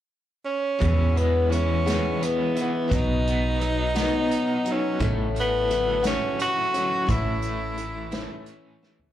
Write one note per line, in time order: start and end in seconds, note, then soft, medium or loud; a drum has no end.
0.45 1.19 C#4 medium
0.79 1.50 E2 medium
0.79 1.99 E2 medium
0.79 1.51 B2 medium
0.79 1.49 E3 medium
0.79 1.50 G#3 medium
0.79 1.51 B3 medium
0.79 1.51 E4 medium
0.79 kick medium
0.79 closed hi-hat medium
1.16 1.86 G#3 medium
1.16 1.52 B3 medium
1.16 closed hi-hat medium
1.50 1.85 E3 soft
1.50 1.85 G#3 soft
1.50 1.85 B3 soft
1.50 2.26 C#4 medium
1.50 closed hi-hat medium
1.54 1.84 E4 medium
1.85 2.57 E2 medium
1.85 2.56 B2 soft
1.85 2.56 E3 medium
1.85 2.56 G#3 medium
1.85 2.54 B3 medium
1.85 2.54 E4 medium
1.85 snare medium
1.85 closed hi-hat medium
2.21 2.91 B3 medium
2.21 2.57 B3 medium
2.21 closed hi-hat medium
2.55 2.89 E3 soft
2.55 2.89 G#3 soft
2.55 2.88 B3 soft
2.55 2.90 E4 soft
2.55 closed hi-hat medium
2.62 2.96 B3 medium
2.88 3.59 B2 medium
2.88 3.58 F#3 medium
2.88 3.59 B3 medium
2.88 3.60 D#4 medium
2.88 3.62 F#4 medium
2.88 kick medium
2.88 closed hi-hat medium
2.92 4.08 B1 medium
2.92 4.73 D#4 medium
3.27 3.96 B3 medium
3.27 closed hi-hat medium
3.59 3.95 F#3 medium
3.59 3.95 B3 medium
3.59 3.94 D#4 medium
3.59 3.94 F#4 medium
3.59 closed hi-hat medium
3.95 4.66 B2 medium
3.95 4.66 F#3 medium
3.95 4.65 B3 medium
3.95 4.64 D#4 medium
3.95 4.63 F#4 medium
3.95 snare loud
3.95 closed hi-hat medium
4.31 5.00 D#4 medium
4.31 closed hi-hat medium
4.65 5.01 F#3 medium
4.65 5.00 B3 soft
4.65 5.00 D#4 soft
4.65 5.00 F#4 soft
4.65 closed hi-hat soft
4.72 5.11 C#4 medium
4.99 6.17 A1 medium
4.99 5.69 A2 medium
4.99 5.67 F#3 medium
4.99 5.68 A3 medium
4.99 5.69 C#4 medium
4.99 5.70 F#4 medium
4.99 kick medium
4.99 closed hi-hat medium
5.35 6.05 A3 medium
5.35 closed hi-hat medium
5.40 6.03 B3 medium
5.68 6.03 F#3 soft
5.68 6.03 A3 medium
5.68 6.02 C#4 medium
5.68 6.01 F#4 medium
5.68 closed hi-hat medium
6.03 6.74 A2 medium
6.03 6.74 F#3 medium
6.03 6.75 A3 medium
6.03 6.73 C#4 medium
6.03 6.38 C#4 medium
6.03 6.71 F#4 medium
6.03 snare medium
6.03 closed hi-hat medium
6.39 8.48 C#4 medium
6.39 7.12 F#4 loud
6.39 closed hi-hat medium
6.72 7.09 F#3 medium
6.72 7.07 A3 soft
6.72 7.08 C#4 soft
6.72 7.08 F#4 soft
6.72 closed hi-hat medium
7.07 8.26 A1 medium
7.07 7.78 A2 medium
7.07 7.75 E3 medium
7.07 7.76 A3 medium
7.07 7.77 C#4 medium
7.07 7.78 E4 medium
7.07 8.49 E4 medium
7.07 kick loud
7.07 closed hi-hat medium
7.42 8.12 A3 medium
7.42 closed hi-hat medium
7.76 8.12 E3 soft
7.76 8.11 A3 medium
7.76 8.11 C#4 medium
7.76 8.10 E4 medium
7.76 closed hi-hat soft
8.11 8.83 A2 medium
8.11 8.83 E3 medium
8.11 8.83 A3 medium
8.11 8.82 C#4 medium
8.11 8.81 E4 medium
8.11 snare medium
8.11 closed hi-hat medium
8.46 9.13 C#4 medium
8.46 closed hi-hat medium
8.83 9.13 E3 medium
8.83 9.13 A3 soft
8.83 9.13 C#4 soft
8.83 9.13 E4 medium
8.83 snare soft
8.99 floor tom medium